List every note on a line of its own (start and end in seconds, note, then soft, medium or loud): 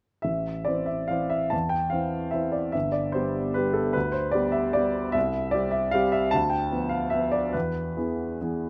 0.22 0.66 A1 soft
0.22 0.66 E5 medium
0.65 1.06 E3 soft
0.65 1.07 C4 soft
0.65 1.07 C5 soft
0.65 0.87 D5 medium
0.86 1.09 E5 soft
1.08 1.48 E3 soft
1.08 1.49 C4 soft
1.08 1.49 C5 soft
1.08 1.31 F5 medium
1.30 1.51 E5 medium
1.50 1.91 E2 soft
1.50 1.71 A5 medium
1.69 1.91 G5 medium
1.90 2.30 E3 soft
1.90 2.30 C4 soft
1.90 2.30 C5 soft
1.90 2.32 F5 medium
2.31 2.70 E3 soft
2.31 2.70 C4 soft
2.31 2.70 C5 soft
2.31 2.53 E5 medium
2.52 2.73 D5 soft
2.72 3.13 G1 soft
2.72 2.93 E5 medium
2.92 3.13 D5 medium
3.12 3.52 G3 soft
3.12 3.52 B3 soft
3.12 3.52 G4 soft
3.12 3.55 C5 medium
3.54 3.91 G3 soft
3.54 3.92 B3 soft
3.54 3.92 G4 soft
3.54 3.75 B4 medium
3.73 3.94 A4 medium
3.93 4.34 D2 soft
3.93 4.13 B4 medium
4.12 4.33 C5 medium
4.32 4.72 G3 soft
4.32 4.72 B3 soft
4.32 4.72 G4 soft
4.32 4.54 D5 medium
4.52 4.74 E5 medium
4.73 5.11 G3 soft
4.73 5.11 B3 soft
4.73 5.11 G4 soft
4.73 5.14 D5 medium
5.12 5.52 C2 soft
5.12 5.52 E5 medium
5.51 5.90 G3 soft
5.51 5.90 C4 soft
5.51 5.90 G4 soft
5.51 5.72 D5 medium
5.71 5.92 E5 medium
5.91 6.29 G3 soft
5.91 6.29 C4 soft
5.91 6.29 G4 soft
5.91 6.13 F5 medium
6.12 6.32 E5 medium
6.31 6.70 D2 medium
6.31 6.51 A5 medium
6.50 6.90 G5 medium
6.72 7.08 F3 soft
6.72 7.08 B3 soft
6.72 7.09 B4 soft
6.89 7.11 F5 medium
7.10 7.50 F3 soft
7.10 7.50 B3 soft
7.10 7.51 B4 soft
7.10 7.32 E5 medium
7.32 7.53 D5 medium
7.53 7.95 E2 soft
7.53 8.70 B4 medium
7.97 8.37 E3 soft
7.97 8.37 B3 soft
7.97 8.37 G#4 soft
8.41 8.70 E3 soft
8.41 8.70 B3 soft
8.41 8.70 G#4 soft